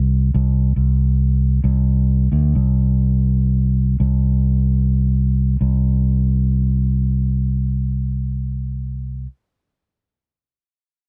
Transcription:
Already playing: C2
0.34 C2
0.76 C2
1.64 C2
2.32 D2
2.55 C2
4.00 C2
5.61 C2

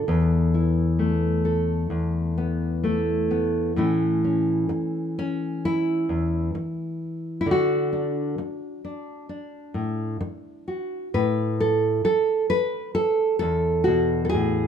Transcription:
Already playing: A4
0.08 E2 B3
0.54 E4
0.99 A3
1.45 A4
1.90 E2
2.38 B3
2.84 A3 E4
3.31 B3
3.76 A2 E3 A3 C#4 E4
4.24 C#4
4.69 muted nylon-string guitar stroke
5.19 C#4
5.65 E4
6.09 E2
6.55 muted nylon-string guitar stroke
7.41 E4
7.46 D3
7.51 F#4
7.93 D4
8.38 muted nylon-string guitar stroke
8.85 D4
9.29 D4
9.74 A2
10.21 muted nylon-string guitar stroke
10.68 F#4
11.14 A2 B4
11.60 A4
12.04 A4, muted nylon-string guitar stroke
12.50 B4
12.95 A4
13.39 E2 A4
13.84 B2 F#4
14.25 A4
14.29 G#4
14.34 A2

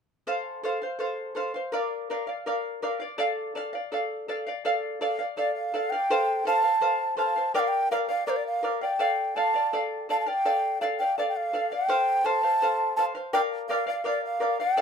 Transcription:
0.27 A4 C5 F5
0.63 A4 C5 F5
0.82 C5 F5
0.99 A4 C5 F5
1.35 A4 C5 F5
1.54 C5 F5
1.72 A#4 D5 F5
2.10 A#4 D5 F5
2.27 D5 F5
2.46 A#4 D5 F5
2.82 A#4 D5 F5
3.00 D5 F5
3.18 A4 D5 F5
3.55 A4 D5 F5
3.73 D5 F5
3.92 A4 D5 F5
4.28 A4 D5 F5
4.47 D5 F5
4.65 A4 D5 F5
5.01 A4 D5 F5
5.19 D5 F5
5.37 A4 D5 F5
5.55 F5
5.74 A4 D5 F5
5.90 D5 F5 G5
6.10 A4 C5 F5
6.45 A4 C5 F5 A5
6.64 C5 F5
6.81 A4 C5 F5
7.17 A4 C5 F5 A5
7.36 C5 F5
7.54 A#4 D5 F5 G5
7.59 F5
7.68 G5
7.91 A#4 D5 F5
8.09 D5 F5
8.27 A#4 C5 D5 F5
8.36 D5
8.47 F5
8.63 A#4 D5 F5
8.81 D5 F5 G5
8.99 A4 D5 F5
9.36 A4 D5 F5 A5
9.54 D5 F5
9.73 A4 D5 F5
10.09 A4 D5 F5 A5
10.20 A5
10.26 D5 F5 G5
10.45 A4 D5 F5
10.81 A4 D5 F5
11.00 D5 F5 G5
11.18 A4 D5 F5
11.29 G5
11.36 F5
11.53 A4 D5 F5
11.72 D5 F5 G5
11.88 A4 C5 F5
12.24 A4 C5 F5 A5
12.43 C5 F5
12.62 A4 C5 F5
12.96 A4 C5 F5 A5
13.15 C5 F5
13.33 A#4 D5 F5 G5
13.69 A#4 D5 F5
13.87 D5 F5
14.04 A#4 D5 F5
14.25 F5
14.40 A#4 D5 F5
14.60 D5 F5 G5
14.77 A4 D5 F5

